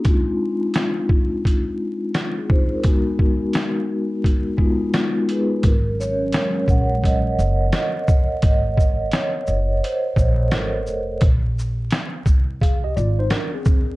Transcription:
0.05 1.07 G#3 medium
0.05 1.08 C4 medium
0.05 0.14 D4 medium
0.05 1.08 F4 medium
0.05 kick loud
0.05 closed hi-hat medium
0.13 1.11 D#4 medium
0.74 snare loud
0.74 closed hi-hat medium
1.09 kick medium
1.45 kick medium
1.45 closed hi-hat medium
2.14 snare medium
2.14 closed hi-hat medium
2.38 2.49 C4 soft
2.38 2.49 G#4 medium
2.50 2.72 D#4 medium
2.50 2.72 C5 medium
2.50 kick medium
2.74 3.07 A#4 medium
2.83 3.86 G#3 medium
2.83 3.86 B3 medium
2.83 3.87 D#4 medium
2.83 3.87 F#4 medium
2.83 kick medium
2.83 closed hi-hat medium
3.19 kick medium
3.53 snare loud
3.53 closed hi-hat medium
4.24 kick medium
4.24 closed hi-hat medium
4.57 5.13 G#3 medium
4.57 5.14 B3 medium
4.57 5.14 D#4 medium
4.57 5.15 F4 medium
4.57 kick medium
4.94 snare loud
4.94 closed hi-hat medium
5.28 5.57 G#3 medium
5.28 5.57 B3 medium
5.28 5.58 D#4 medium
5.28 5.58 G#4 medium
5.28 5.66 B4 medium
5.28 closed hi-hat medium
5.63 6.30 G#1 medium
5.63 8.40 F#3 medium
5.63 8.40 G#3 medium
5.63 8.40 C#4 medium
5.63 6.00 A#4 medium
5.63 kick loud
5.63 closed hi-hat medium
6.00 6.71 C#5 medium
6.00 shaker soft
6.32 snare loud
6.32 closed hi-hat medium
6.68 7.34 A#1 medium
6.68 7.01 F#5 medium
6.68 kick medium
6.68 shaker soft
7.04 7.73 D#5 medium
7.04 kick medium
7.04 closed hi-hat medium
7.39 7.70 F#1 medium
7.39 shaker soft
7.73 8.39 D#5 medium
7.73 snare loud
7.73 closed hi-hat medium
8.08 kick loud
8.08 shaker soft
8.42 9.09 G#1 medium
8.42 9.15 D#5 medium
8.42 kick loud
8.42 closed hi-hat medium
8.77 kick medium
8.77 shaker soft
9.11 9.85 C#5 medium
9.11 snare loud
9.11 closed hi-hat medium
9.47 9.79 F#1 medium
9.47 shaker soft
9.83 10.50 C5 medium
9.83 closed hi-hat medium
10.16 10.49 A#1 medium
10.16 kick medium
10.16 shaker soft
10.49 10.87 G#1 medium
10.49 10.53 A4 medium
10.49 snare loud
10.49 closed hi-hat medium
10.53 11.06 A#4 medium
10.86 11.19 F1 medium
10.86 shaker soft
11.21 11.87 A#1 medium
11.21 kick loud
11.21 closed hi-hat medium
11.59 shaker soft
11.91 snare loud
11.91 closed hi-hat medium
12.26 12.92 C2 medium
12.26 kick medium
12.26 shaker soft
12.61 12.83 G#4 medium
12.61 12.83 F5 medium
12.61 kick medium
12.61 closed hi-hat medium
12.84 12.96 G4 medium
12.84 12.95 D#5 medium
12.96 13.28 G#1 loud
12.96 13.18 F4 medium
12.96 13.18 D5 medium
12.96 shaker soft
13.19 13.31 D#4 medium
13.19 13.30 C5 medium
13.30 13.54 D4 medium
13.30 13.53 A#4 medium
13.30 snare medium
13.30 closed hi-hat medium
13.54 13.96 C4 medium
13.54 13.96 G#4 medium
13.65 kick loud
13.65 shaker soft

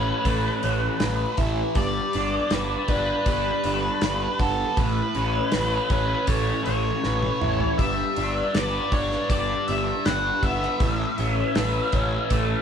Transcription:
0.00 0.11 A1 medium
0.00 0.64 A2 medium
0.00 0.62 C#4 medium
0.00 1.00 B4 medium
0.00 1.36 B4 medium
0.25 0.48 A1 medium
0.25 1.76 A3 medium
0.25 kick medium
0.25 open hi-hat medium
0.63 0.87 A1 medium
0.63 1.76 C#4 medium
0.63 open hi-hat medium
1.00 1.24 A1 medium
1.00 2.51 B4 medium
1.00 snare medium
1.00 open hi-hat medium
1.37 1.61 A1 medium
1.37 1.76 E4 medium
1.37 kick medium
1.37 open hi-hat soft
1.75 1.99 G1 medium
1.75 3.26 G3 medium
1.75 2.89 D5 medium
1.75 kick medium
1.75 open hi-hat medium
2.13 2.38 G1 medium
2.13 2.88 D4 medium
2.13 open hi-hat soft
2.51 2.75 G1 medium
2.51 4.01 B4 medium
2.51 snare loud
2.51 open hi-hat medium
2.88 3.12 G1 medium
2.88 3.63 D4 medium
2.88 3.27 B4 medium
2.88 kick medium
2.88 open hi-hat soft
3.26 3.50 G1 medium
3.26 4.78 G3 medium
3.26 4.44 B4 medium
3.26 kick medium
3.26 open hi-hat medium
3.64 3.88 G1 medium
3.64 4.78 D4 medium
3.64 open hi-hat soft
4.01 4.26 G1 medium
4.01 4.80 B4 medium
4.01 snare loud
4.01 open hi-hat medium
4.39 4.63 G1 medium
4.39 4.80 B3 medium
4.39 4.79 A4 medium
4.39 kick medium
4.39 open hi-hat soft
4.77 5.01 A1 medium
4.77 6.66 A2 medium
4.77 5.90 B4 medium
4.77 kick medium
4.77 open hi-hat soft
5.15 5.39 A1 medium
5.15 5.89 C#4 medium
5.15 open hi-hat soft
5.52 5.77 A1 medium
5.52 7.03 B4 medium
5.52 snare loud
5.52 open hi-hat medium
5.90 6.13 A1 medium
5.90 6.65 C#4 medium
5.90 6.28 B4 medium
5.90 kick medium
5.90 open hi-hat soft
6.27 6.51 A1 medium
6.27 7.79 A3 medium
6.27 6.63 C#5 medium
6.27 kick medium
6.27 open hi-hat medium
6.64 6.90 A1 medium
6.64 7.79 C#4 medium
6.64 7.74 C#5 medium
6.64 open hi-hat soft
7.03 7.28 A1 medium
7.03 8.55 B4 medium
7.03 snare soft
7.23 high tom soft
7.42 7.66 A1 medium
7.42 7.79 E4 medium
7.42 mid tom medium
7.60 floor tom medium
7.78 8.02 G1 medium
7.78 9.30 G3 medium
7.78 8.54 E5 medium
7.78 kick medium
7.78 open hi-hat medium
8.16 8.41 G1 medium
8.16 8.92 D4 medium
8.16 open hi-hat soft
8.54 8.78 G1 medium
8.54 10.06 B4 medium
8.54 8.92 D5 medium
8.54 snare loud
8.54 open hi-hat medium
8.92 9.15 G1 medium
8.92 9.69 D4 medium
8.92 9.30 C#5 medium
8.92 kick medium
8.92 open hi-hat soft
9.12 snare soft
9.30 9.53 G1 medium
9.30 10.82 G3 medium
9.30 9.65 D5 medium
9.30 kick medium
9.30 open hi-hat medium
9.68 9.92 G1 medium
9.68 10.82 D4 medium
9.68 10.07 E5 medium
9.68 open hi-hat soft
10.06 10.29 G1 medium
10.06 10.85 B4 medium
10.06 10.41 F#5 loud
10.06 snare loud
10.06 open hi-hat medium
10.43 10.66 G1 medium
10.43 10.85 B3 medium
10.43 12.62 E5 medium
10.43 kick medium
10.43 open hi-hat soft
10.62 snare soft
10.80 11.04 A1 medium
10.80 12.62 A2 medium
10.80 kick loud
10.80 open hi-hat medium
11.18 11.42 A1 medium
11.18 11.92 C#4 medium
11.18 open hi-hat soft
11.55 11.79 A1 medium
11.55 12.62 B4 medium
11.55 snare loud
11.55 open hi-hat medium
11.92 12.17 A1 medium
11.92 12.62 C#4 medium
11.92 kick medium
11.92 open hi-hat soft
12.30 12.54 A1 medium
12.30 12.62 A3 medium
12.30 kick medium
12.30 open hi-hat medium

